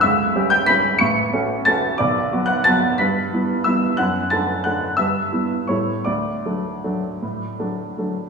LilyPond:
<<
  \new Staff \with { instrumentName = "Upright piano" } { \time 3/4 \key d \major \tempo 4 = 178 <e'' e'''>4. <g'' g'''>8 <b'' b'''>4 | <cis''' cis''''>2 <a'' a'''>4 | <d'' d'''>4. <fis'' fis'''>8 <a'' a'''>4 | <b'' b'''>2 <e'' e'''>4 |
<fis'' fis'''>4 <a'' a'''>4 <fis'' fis'''>4 | <e'' e'''>2 <cis'' cis'''>4 | <d'' d'''>2.~ | <d'' d'''>2 r4 | }
  \new Staff \with { instrumentName = "Upright piano" } { \time 3/4 \key d \major cis,4 <g cis' g'>4 <g cis' g'>4 | a,,4 <a cis' fis'>4 <a cis' fis'>4 | b,,4 <fis b fis'>4 <fis b fis'>4 | g,4 <g b e'>4 <g b e'>4 |
fis,4 <a d'>4 <a d'>4 | g,4 <g b e'>4 <a, g a e'>4 | d,4 <fis a d'>4 <fis a d'>4 | a,4 <fis a d'>4 <fis a d'>4 | }
>>